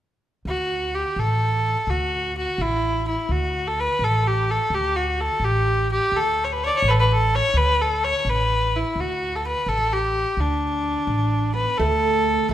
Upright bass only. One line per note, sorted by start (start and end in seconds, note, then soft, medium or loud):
0.45 1.03 D2 medium
1.16 1.74 A1 medium
1.87 2.45 D2 medium
2.58 3.16 A1 medium
3.29 3.86 D2 medium
3.99 4.57 A1 medium
4.70 5.28 D2 medium
5.40 5.98 A1 medium
6.12 6.69 D2 medium
6.82 7.40 A1 medium
7.54 8.11 D2 medium
8.25 8.82 A1 medium
8.96 9.53 D2 medium
9.66 10.24 A1 medium
10.37 10.94 D2 medium
11.07 11.65 A1 medium
11.79 12.36 D2 medium
12.49 12.54 A1 medium